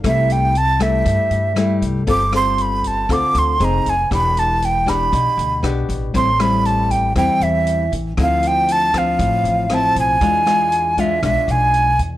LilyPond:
<<
  \new Staff \with { instrumentName = "Flute" } { \time 4/4 \key e \phrygian \tempo 4 = 118 e''8 g''8 a''8 e''2 r8 | d'''8 c'''8 b''8 a''8 d'''8 c'''8 bes''8 aes''8 | b''8 a''8 g''8 b''4. r4 | c'''8 b''8 a''8 g''8 g''8 e''4 r8 |
f''8 g''8 a''8 f''4. a''8 gis''8~ | gis''4. e''8 e''8 gis''4 r8 | }
  \new Staff \with { instrumentName = "Nylon-string guitar" } { \time 4/4 \key e \phrygian << { <g a e'>4 r8 <g a e'>4. <g a e'>4 | <c' f' a'>8 <c' f' a'>4. <c' f' a'>4 <c' ees' aes'>8 r8 | <b d' g'>4 r8 <b d' g'>4. <b d' g'>4 | <g c' e'>8 <g c' e'>4. <g c' e'>4. r8 |
<f c' e'>4. <f c'>4. <f c' e'>4 | <gis d' f'>8 <gis d' f'>4 <gis d' f'>8 <gis d' f'>4. r8 | } \\ { c2 g,2 | g2 d4 r4 | e2 b,2 | a,2 e2 |
d2 a,2 | e2 b,2 | } >> }
  \new Staff \with { instrumentName = "Upright bass" } { \clef bass \time 4/4 \key e \phrygian c,2 g,16 r16 g,4 c,8 | g,,2 d,16 r16 d,8 f,,8 f,,8 | e,,2 b,,16 r16 d,8 b,,8 a,,8 | a,,2 e,16 r16 e,4 a,,8 |
d,2 a,,16 r16 a,,4 b,,8 | e,2 b,,16 r16 b,,4 e,8 | }
  \new DrumStaff \with { instrumentName = "Drums" } \drummode { \time 4/4 <hh bd ss>8 hh8 hh8 <hh bd ss>8 <hh bd>8 hh8 <hh ss>8 <hh bd>8 | <hh bd>8 <hh ss>8 hh8 <hh bd>8 <hh bd ss>8 hh8 hh8 <hh bd>8 | <hh bd ss>8 hh8 hh8 <hh bd ss>8 <hh bd>8 hh8 <hh ss>8 <hh bd>8 | <hh bd>8 <hh ss>8 hh8 <hh bd>8 <hh bd ss>8 hh8 hh8 <hh bd>8 |
<hh bd ss>8 hh8 hh8 <hh bd ss>8 <hh bd>8 hh8 <hh ss>8 <hh bd>8 | <hh bd>8 <hh ss>8 hh8 <hh bd>8 <hh bd ss>8 hh8 hh8 <hh bd>8 | }
>>